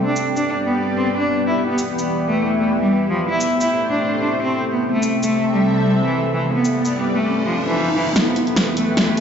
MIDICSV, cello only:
0, 0, Header, 1, 2, 480
1, 0, Start_track
1, 0, Tempo, 405405
1, 62, Time_signature, 4, 2, 24, 8
1, 10896, End_track
2, 0, Start_track
2, 0, Title_t, "Cello"
2, 0, Program_c, 0, 42
2, 58, Note_on_c, 0, 62, 93
2, 258, Note_off_c, 0, 62, 0
2, 428, Note_on_c, 0, 62, 87
2, 621, Note_off_c, 0, 62, 0
2, 779, Note_on_c, 0, 59, 89
2, 979, Note_off_c, 0, 59, 0
2, 1148, Note_on_c, 0, 60, 82
2, 1271, Note_off_c, 0, 60, 0
2, 1390, Note_on_c, 0, 62, 89
2, 1582, Note_off_c, 0, 62, 0
2, 1739, Note_on_c, 0, 64, 79
2, 1879, Note_off_c, 0, 64, 0
2, 1980, Note_on_c, 0, 59, 96
2, 2179, Note_off_c, 0, 59, 0
2, 2350, Note_on_c, 0, 59, 85
2, 2542, Note_off_c, 0, 59, 0
2, 2699, Note_on_c, 0, 57, 91
2, 2899, Note_off_c, 0, 57, 0
2, 3069, Note_on_c, 0, 57, 79
2, 3191, Note_off_c, 0, 57, 0
2, 3309, Note_on_c, 0, 55, 89
2, 3501, Note_off_c, 0, 55, 0
2, 3661, Note_on_c, 0, 53, 83
2, 3799, Note_off_c, 0, 53, 0
2, 3901, Note_on_c, 0, 64, 93
2, 4100, Note_off_c, 0, 64, 0
2, 4269, Note_on_c, 0, 64, 83
2, 4461, Note_off_c, 0, 64, 0
2, 4620, Note_on_c, 0, 62, 91
2, 4819, Note_off_c, 0, 62, 0
2, 4990, Note_on_c, 0, 62, 86
2, 5112, Note_off_c, 0, 62, 0
2, 5232, Note_on_c, 0, 60, 91
2, 5423, Note_off_c, 0, 60, 0
2, 5581, Note_on_c, 0, 59, 79
2, 5720, Note_off_c, 0, 59, 0
2, 5821, Note_on_c, 0, 57, 94
2, 6020, Note_off_c, 0, 57, 0
2, 6189, Note_on_c, 0, 57, 87
2, 6382, Note_off_c, 0, 57, 0
2, 6541, Note_on_c, 0, 55, 92
2, 6740, Note_off_c, 0, 55, 0
2, 6910, Note_on_c, 0, 55, 84
2, 7032, Note_off_c, 0, 55, 0
2, 7151, Note_on_c, 0, 52, 88
2, 7342, Note_off_c, 0, 52, 0
2, 7501, Note_on_c, 0, 52, 82
2, 7640, Note_off_c, 0, 52, 0
2, 7741, Note_on_c, 0, 59, 94
2, 7940, Note_off_c, 0, 59, 0
2, 8111, Note_on_c, 0, 59, 89
2, 8302, Note_off_c, 0, 59, 0
2, 8462, Note_on_c, 0, 57, 91
2, 8660, Note_off_c, 0, 57, 0
2, 8830, Note_on_c, 0, 53, 79
2, 8952, Note_off_c, 0, 53, 0
2, 9071, Note_on_c, 0, 52, 92
2, 9263, Note_off_c, 0, 52, 0
2, 9421, Note_on_c, 0, 52, 86
2, 9560, Note_off_c, 0, 52, 0
2, 9660, Note_on_c, 0, 59, 98
2, 9859, Note_off_c, 0, 59, 0
2, 10030, Note_on_c, 0, 59, 89
2, 10222, Note_off_c, 0, 59, 0
2, 10382, Note_on_c, 0, 57, 88
2, 10580, Note_off_c, 0, 57, 0
2, 10750, Note_on_c, 0, 57, 87
2, 10872, Note_off_c, 0, 57, 0
2, 10896, End_track
0, 0, End_of_file